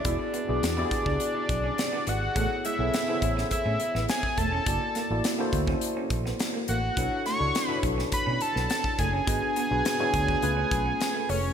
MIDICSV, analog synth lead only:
0, 0, Header, 1, 2, 480
1, 0, Start_track
1, 0, Key_signature, 3, "minor"
1, 0, Tempo, 576369
1, 42, Time_signature, 4, 2, 24, 8
1, 9604, End_track
2, 0, Start_track
2, 0, Title_t, "Analog synth lead"
2, 0, Program_c, 0, 81
2, 0, Note_on_c, 0, 74, 98
2, 1739, Note_on_c, 0, 78, 112
2, 1752, Note_off_c, 0, 74, 0
2, 2206, Note_off_c, 0, 78, 0
2, 2211, Note_on_c, 0, 76, 94
2, 2895, Note_off_c, 0, 76, 0
2, 2933, Note_on_c, 0, 76, 88
2, 3376, Note_off_c, 0, 76, 0
2, 3411, Note_on_c, 0, 80, 97
2, 3647, Note_on_c, 0, 81, 106
2, 3659, Note_off_c, 0, 80, 0
2, 4366, Note_off_c, 0, 81, 0
2, 5571, Note_on_c, 0, 78, 85
2, 6014, Note_off_c, 0, 78, 0
2, 6049, Note_on_c, 0, 85, 116
2, 6390, Note_off_c, 0, 85, 0
2, 6390, Note_on_c, 0, 83, 116
2, 6493, Note_off_c, 0, 83, 0
2, 6774, Note_on_c, 0, 83, 102
2, 7010, Note_on_c, 0, 81, 97
2, 7022, Note_off_c, 0, 83, 0
2, 7244, Note_off_c, 0, 81, 0
2, 7249, Note_on_c, 0, 81, 94
2, 7469, Note_off_c, 0, 81, 0
2, 7489, Note_on_c, 0, 80, 120
2, 9407, Note_on_c, 0, 73, 92
2, 9419, Note_off_c, 0, 80, 0
2, 9604, Note_off_c, 0, 73, 0
2, 9604, End_track
0, 0, End_of_file